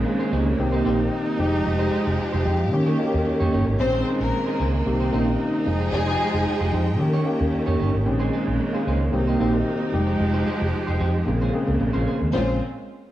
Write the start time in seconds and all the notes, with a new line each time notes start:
Already playing: C#3 D#3 G#3 A#3 C4 C#4 G#4
0.05 C5 F5, muted clean electric guitar stroke
0.19 C#4 D#4 G#4 C5
0.32 C#2 C#4 D#4 G4 G#4 C5
0.46 G#4 C#5, muted clean electric guitar stroke
0.58 C2 C3 D#3 A#3 C4 D#4 G4, muted clean electric guitar stroke
0.72 A#3 D#4 G4 C5
0.85 A#1 D#3 A#3 C4 D#4 G4 C5
1.00 muted clean electric guitar stroke
1.12 muted clean electric guitar stroke
1.26 muted clean electric guitar stroke
1.38 F1 F3 G3 G#3 D#4 G4
1.45 G#3
1.53 muted clean electric guitar stroke
1.65 F1, muted clean electric guitar stroke
1.79 G#3 D#4 G4 C5
1.91 G#3 D#4 G4 C5
2.06 F1, muted clean electric guitar stroke
2.18 muted clean electric guitar stroke
2.32 F1 G#3 D#4 G4 C5
2.45 F2 G#3 D#4 G4 C5 G5
2.59 F5, muted clean electric guitar stroke
2.72 D#3 A#3 C#4 G4 C#5, muted clean electric guitar stroke
2.86 A#3 D#4 G4 C#5
2.98 D#3 A#3 C#4 F#4 D#5, muted clean electric guitar stroke
3.06 G4
3.13 D#2, muted clean electric guitar stroke
3.26 C#5, muted clean electric guitar stroke
3.40 F2 A#3 D#4 G4 C#5
3.52 G1 A#3 D#4 G4 C#5
3.66 G#1, muted clean electric guitar stroke
3.78 A#1 C#3 D#3 G#3 A#3 C4 C#4 G4 C5, muted clean electric guitar stroke
3.86 G#4
3.93 C#4 D#4 G#4 C5
4.06 C#4 D#4 G#4 C5
4.20 A#1 A#3 A#4, muted clean electric guitar stroke
4.33 muted clean electric guitar stroke
4.46 C#4 D#4 G#4 C5
4.59 C#2 C#4 D#4 G#4 C5
4.74 muted clean electric guitar stroke
4.85 C2 C3 D#3 A#3 C4 D#4 G4, muted clean electric guitar stroke
5.00 A#3 D#4 G4 C5
5.12 A#1 D#3 A#3 C4 C#4 D#4 G4 C5
5.20 D#4
5.27 muted clean electric guitar stroke
5.39 muted clean electric guitar stroke
5.53 muted clean electric guitar stroke
5.65 F1 F3 G#3 D#4 G#4 G5
5.81 muted clean electric guitar stroke
5.92 F1 G#3 G#4, muted clean electric guitar stroke
6.07 G#3 D#4 G4 C5
6.20 G#3 D#4 G4 C5
6.34 F1, muted clean electric guitar stroke
6.47 muted clean electric guitar stroke
6.60 F1 G#3 D#4 G4 C5
6.73 F2 G#3 D#4 G4 C5
6.88 muted clean electric guitar stroke
6.98 D#3 A#3 C#4 G4, muted clean electric guitar stroke
7.13 A#3 D#4 G4 C#5
7.25 D#3 A#3 C#4 G4, muted clean electric guitar stroke
7.40 D#2, muted clean electric guitar stroke
7.53 muted clean electric guitar stroke
7.66 F2 A#3 D#4 G4 C#5
7.79 G1 A#3 D#4 G4 C#5
7.93 G#1, muted clean electric guitar stroke
8.05 A#1 C#3 D#3 G#3 A#3 C4 C#4 G4, muted clean electric guitar stroke
8.13 G#4
8.20 C#4 D#4 G#4 C5
8.33 C#4 D#4 G#4 C5
8.47 A#1 G#4 C#5, muted clean electric guitar stroke
8.59 A#4 D#5, muted clean electric guitar stroke
8.73 C#4 D#4 G#4 C5 F5
8.87 C#2 C#4 D#4 G#4 C5
9.00 G#4 C#5, muted clean electric guitar stroke
9.12 C2 C3 D#3 A#3 C4 D#4 G4, muted clean electric guitar stroke
9.27 A#3 D#4 G4 C5
9.39 A#1 D#3 A#3 C4 D#4 F#4 G4 C5
9.47 G4
9.54 muted clean electric guitar stroke
9.66 muted clean electric guitar stroke
9.81 muted clean electric guitar stroke
9.92 F1 F3 G3 G#3 D#4 G4
9.99 G#3
10.07 muted clean electric guitar stroke
10.20 F1, muted clean electric guitar stroke
10.34 G#3 D#4 G4 C5
10.46 G#3 D#4 G4 C5
10.60 F1, muted clean electric guitar stroke
10.73 muted clean electric guitar stroke
10.87 F1 G#3 D#4 G4 C5
10.99 F2 G#3 D#4 G4 C5
11.15 muted clean electric guitar stroke
11.26 A#1 C#3 G#3 A#3 C4 G#4, muted clean electric guitar stroke
11.41 G#3 C#4 F4 C5
11.53 C#3 A#3 C4 G#4, muted clean electric guitar stroke
11.67 C#2, muted clean electric guitar stroke
11.80 A#1, muted clean electric guitar stroke
11.93 A#1 G#3 C#4 F4 C5
12.06 G#3 C#4 F4 C5
12.21 D#2, muted clean electric guitar stroke
12.32 A#1 A#2 C#3 G#3 A#3 C4 C#4 F4 G#4 C5